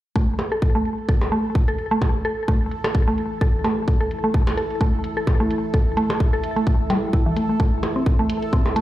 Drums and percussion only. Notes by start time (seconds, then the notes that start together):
0.16 kick
0.39 closed hi-hat, percussion blips
0.62 kick
0.85 closed hi-hat
0.98 closed hi-hat
1.09 kick
1.22 percussion blips
1.32 closed hi-hat
1.55 kick
1.78 closed hi-hat
2.02 kick, percussion blips
2.25 closed hi-hat
2.48 kick
2.71 closed hi-hat
2.84 percussion blips
2.95 kick
3.18 closed hi-hat
3.41 kick
3.64 closed hi-hat, percussion blips
3.88 kick
4.11 closed hi-hat
4.34 kick
4.47 percussion blips
4.57 closed hi-hat
4.70 closed hi-hat
4.81 kick
5.04 closed hi-hat
5.27 kick, percussion blips
5.51 closed hi-hat
5.74 kick
5.97 closed hi-hat
6.10 percussion blips
6.20 kick
6.44 closed hi-hat
6.56 closed hi-hat
6.67 kick
6.90 closed hi-hat, percussion blips
7.13 kick
7.36 closed hi-hat
7.60 kick
7.83 closed hi-hat, percussion blips
8.06 kick
8.30 closed hi-hat
8.42 closed hi-hat
8.53 kick
8.66 percussion blips
8.76 closed hi-hat